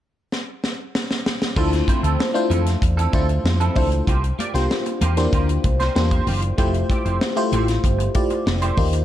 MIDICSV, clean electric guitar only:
0, 0, Header, 1, 3, 480
1, 0, Start_track
1, 0, Key_signature, -1, "minor"
1, 0, Tempo, 626959
1, 1200, Time_signature, 4, 2, 24, 8
1, 6926, End_track
2, 0, Start_track
2, 0, Title_t, "Clean electric guitar"
2, 0, Program_c, 0, 27
2, 1197, Note_on_c, 0, 53, 82
2, 1200, Note_on_c, 0, 60, 69
2, 1205, Note_on_c, 0, 64, 79
2, 1208, Note_on_c, 0, 69, 83
2, 1305, Note_off_c, 0, 69, 0
2, 1310, Note_off_c, 0, 64, 0
2, 1313, Note_off_c, 0, 53, 0
2, 1315, Note_off_c, 0, 60, 0
2, 1437, Note_on_c, 0, 53, 60
2, 1442, Note_on_c, 0, 60, 60
2, 1445, Note_on_c, 0, 64, 66
2, 1449, Note_on_c, 0, 72, 65
2, 1528, Note_off_c, 0, 53, 0
2, 1531, Note_off_c, 0, 60, 0
2, 1532, Note_off_c, 0, 64, 0
2, 1534, Note_off_c, 0, 72, 0
2, 1556, Note_on_c, 0, 69, 61
2, 1560, Note_on_c, 0, 64, 56
2, 1564, Note_on_c, 0, 60, 53
2, 1569, Note_on_c, 0, 53, 48
2, 1648, Note_off_c, 0, 69, 0
2, 1650, Note_off_c, 0, 64, 0
2, 1652, Note_off_c, 0, 60, 0
2, 1654, Note_off_c, 0, 53, 0
2, 1912, Note_on_c, 0, 53, 84
2, 1916, Note_on_c, 0, 60, 86
2, 1920, Note_on_c, 0, 64, 83
2, 1924, Note_on_c, 0, 69, 97
2, 2028, Note_off_c, 0, 69, 0
2, 2030, Note_off_c, 0, 53, 0
2, 2032, Note_off_c, 0, 60, 0
2, 2034, Note_off_c, 0, 64, 0
2, 2276, Note_on_c, 0, 69, 72
2, 2281, Note_on_c, 0, 64, 68
2, 2283, Note_on_c, 0, 60, 58
2, 2289, Note_on_c, 0, 53, 56
2, 2388, Note_off_c, 0, 53, 0
2, 2392, Note_off_c, 0, 60, 0
2, 2392, Note_off_c, 0, 69, 0
2, 2395, Note_off_c, 0, 64, 0
2, 2397, Note_on_c, 0, 53, 67
2, 2401, Note_on_c, 0, 60, 69
2, 2405, Note_on_c, 0, 64, 63
2, 2409, Note_on_c, 0, 69, 76
2, 2488, Note_off_c, 0, 53, 0
2, 2490, Note_off_c, 0, 60, 0
2, 2492, Note_off_c, 0, 64, 0
2, 2494, Note_off_c, 0, 69, 0
2, 2758, Note_on_c, 0, 69, 72
2, 2762, Note_on_c, 0, 64, 66
2, 2766, Note_on_c, 0, 60, 66
2, 2768, Note_on_c, 0, 53, 63
2, 2873, Note_off_c, 0, 53, 0
2, 2873, Note_off_c, 0, 69, 0
2, 2875, Note_off_c, 0, 64, 0
2, 2877, Note_off_c, 0, 60, 0
2, 2882, Note_on_c, 0, 53, 55
2, 2885, Note_on_c, 0, 60, 55
2, 2890, Note_on_c, 0, 64, 60
2, 2895, Note_on_c, 0, 69, 65
2, 2970, Note_off_c, 0, 53, 0
2, 2972, Note_off_c, 0, 60, 0
2, 2974, Note_off_c, 0, 64, 0
2, 2977, Note_off_c, 0, 69, 0
2, 3120, Note_on_c, 0, 58, 81
2, 3124, Note_on_c, 0, 65, 92
2, 3129, Note_on_c, 0, 67, 94
2, 3131, Note_on_c, 0, 72, 88
2, 3231, Note_off_c, 0, 72, 0
2, 3234, Note_off_c, 0, 58, 0
2, 3236, Note_off_c, 0, 65, 0
2, 3236, Note_off_c, 0, 67, 0
2, 3357, Note_on_c, 0, 58, 60
2, 3362, Note_on_c, 0, 65, 57
2, 3366, Note_on_c, 0, 67, 62
2, 3370, Note_on_c, 0, 74, 68
2, 3448, Note_off_c, 0, 58, 0
2, 3450, Note_off_c, 0, 65, 0
2, 3452, Note_off_c, 0, 67, 0
2, 3454, Note_off_c, 0, 74, 0
2, 3478, Note_on_c, 0, 72, 62
2, 3485, Note_on_c, 0, 67, 55
2, 3488, Note_on_c, 0, 65, 49
2, 3489, Note_on_c, 0, 58, 46
2, 3568, Note_off_c, 0, 72, 0
2, 3572, Note_off_c, 0, 67, 0
2, 3573, Note_off_c, 0, 65, 0
2, 3574, Note_off_c, 0, 58, 0
2, 3838, Note_on_c, 0, 58, 86
2, 3843, Note_on_c, 0, 65, 89
2, 3846, Note_on_c, 0, 67, 88
2, 3849, Note_on_c, 0, 72, 82
2, 3953, Note_off_c, 0, 58, 0
2, 3953, Note_off_c, 0, 72, 0
2, 3955, Note_off_c, 0, 65, 0
2, 3957, Note_off_c, 0, 67, 0
2, 4083, Note_on_c, 0, 58, 70
2, 4087, Note_on_c, 0, 65, 76
2, 4090, Note_on_c, 0, 67, 82
2, 4093, Note_on_c, 0, 72, 82
2, 4191, Note_off_c, 0, 72, 0
2, 4196, Note_off_c, 0, 58, 0
2, 4196, Note_off_c, 0, 67, 0
2, 4198, Note_off_c, 0, 65, 0
2, 4438, Note_on_c, 0, 72, 60
2, 4444, Note_on_c, 0, 67, 50
2, 4447, Note_on_c, 0, 65, 53
2, 4449, Note_on_c, 0, 58, 48
2, 4528, Note_off_c, 0, 72, 0
2, 4531, Note_off_c, 0, 67, 0
2, 4533, Note_off_c, 0, 65, 0
2, 4534, Note_off_c, 0, 58, 0
2, 4679, Note_on_c, 0, 72, 66
2, 4682, Note_on_c, 0, 67, 64
2, 4685, Note_on_c, 0, 65, 60
2, 4688, Note_on_c, 0, 58, 59
2, 4790, Note_off_c, 0, 58, 0
2, 4793, Note_off_c, 0, 65, 0
2, 4794, Note_off_c, 0, 72, 0
2, 4795, Note_off_c, 0, 67, 0
2, 4799, Note_on_c, 0, 58, 59
2, 4803, Note_on_c, 0, 65, 61
2, 4808, Note_on_c, 0, 67, 70
2, 4809, Note_on_c, 0, 72, 77
2, 4889, Note_off_c, 0, 58, 0
2, 4891, Note_off_c, 0, 65, 0
2, 4893, Note_off_c, 0, 67, 0
2, 4894, Note_off_c, 0, 72, 0
2, 5040, Note_on_c, 0, 57, 90
2, 5042, Note_on_c, 0, 64, 81
2, 5046, Note_on_c, 0, 67, 94
2, 5049, Note_on_c, 0, 72, 86
2, 5154, Note_off_c, 0, 57, 0
2, 5155, Note_off_c, 0, 64, 0
2, 5155, Note_off_c, 0, 72, 0
2, 5157, Note_off_c, 0, 67, 0
2, 5282, Note_on_c, 0, 57, 56
2, 5286, Note_on_c, 0, 64, 60
2, 5289, Note_on_c, 0, 67, 59
2, 5293, Note_on_c, 0, 74, 62
2, 5371, Note_off_c, 0, 57, 0
2, 5372, Note_off_c, 0, 64, 0
2, 5374, Note_off_c, 0, 67, 0
2, 5376, Note_off_c, 0, 74, 0
2, 5399, Note_on_c, 0, 72, 60
2, 5402, Note_on_c, 0, 67, 58
2, 5407, Note_on_c, 0, 64, 57
2, 5411, Note_on_c, 0, 57, 50
2, 5489, Note_off_c, 0, 72, 0
2, 5490, Note_off_c, 0, 67, 0
2, 5493, Note_off_c, 0, 64, 0
2, 5495, Note_off_c, 0, 57, 0
2, 5763, Note_on_c, 0, 57, 94
2, 5769, Note_on_c, 0, 64, 89
2, 5773, Note_on_c, 0, 67, 90
2, 5775, Note_on_c, 0, 72, 100
2, 5871, Note_off_c, 0, 72, 0
2, 5876, Note_off_c, 0, 57, 0
2, 5876, Note_off_c, 0, 67, 0
2, 5879, Note_off_c, 0, 64, 0
2, 6599, Note_on_c, 0, 72, 70
2, 6605, Note_on_c, 0, 67, 73
2, 6606, Note_on_c, 0, 64, 70
2, 6609, Note_on_c, 0, 57, 65
2, 6714, Note_off_c, 0, 72, 0
2, 6717, Note_off_c, 0, 64, 0
2, 6717, Note_off_c, 0, 67, 0
2, 6719, Note_off_c, 0, 57, 0
2, 6926, End_track
3, 0, Start_track
3, 0, Title_t, "Muted clean electric guitar strokes"
3, 1314, Note_on_c, 9, 29, 36
3, 1391, Note_off_c, 9, 29, 0
3, 1674, Note_on_c, 9, 29, 37
3, 1751, Note_off_c, 9, 29, 0
3, 1794, Note_on_c, 9, 29, 38
3, 1871, Note_off_c, 9, 29, 0
3, 2038, Note_on_c, 9, 29, 39
3, 2114, Note_off_c, 9, 29, 0
3, 2160, Note_on_c, 9, 29, 34
3, 2236, Note_off_c, 9, 29, 0
3, 2518, Note_on_c, 9, 29, 41
3, 2594, Note_off_c, 9, 29, 0
3, 2642, Note_on_c, 9, 29, 33
3, 2719, Note_off_c, 9, 29, 0
3, 3003, Note_on_c, 9, 29, 38
3, 3079, Note_off_c, 9, 29, 0
3, 3240, Note_on_c, 9, 29, 47
3, 3317, Note_off_c, 9, 29, 0
3, 3601, Note_on_c, 9, 29, 41
3, 3677, Note_off_c, 9, 29, 0
3, 3723, Note_on_c, 9, 29, 41
3, 3800, Note_off_c, 9, 29, 0
3, 3963, Note_on_c, 9, 29, 47
3, 4039, Note_off_c, 9, 29, 0
3, 4200, Note_on_c, 9, 29, 37
3, 4277, Note_off_c, 9, 29, 0
3, 4322, Note_on_c, 9, 29, 42
3, 4399, Note_off_c, 9, 29, 0
3, 4559, Note_on_c, 9, 29, 42
3, 4636, Note_off_c, 9, 29, 0
3, 4920, Note_on_c, 9, 29, 40
3, 4996, Note_off_c, 9, 29, 0
3, 5165, Note_on_c, 9, 29, 42
3, 5241, Note_off_c, 9, 29, 0
3, 5523, Note_on_c, 9, 29, 42
3, 5600, Note_off_c, 9, 29, 0
3, 5642, Note_on_c, 9, 29, 38
3, 5719, Note_off_c, 9, 29, 0
3, 5880, Note_on_c, 9, 29, 43
3, 5957, Note_off_c, 9, 29, 0
3, 6000, Note_on_c, 9, 29, 40
3, 6077, Note_off_c, 9, 29, 0
3, 6114, Note_on_c, 9, 29, 36
3, 6191, Note_off_c, 9, 29, 0
3, 6359, Note_on_c, 9, 29, 51
3, 6436, Note_off_c, 9, 29, 0
3, 6479, Note_on_c, 9, 29, 41
3, 6556, Note_off_c, 9, 29, 0
3, 6724, Note_on_c, 9, 29, 46
3, 6801, Note_off_c, 9, 29, 0
3, 6842, Note_on_c, 9, 29, 42
3, 6919, Note_off_c, 9, 29, 0
3, 6926, End_track
0, 0, End_of_file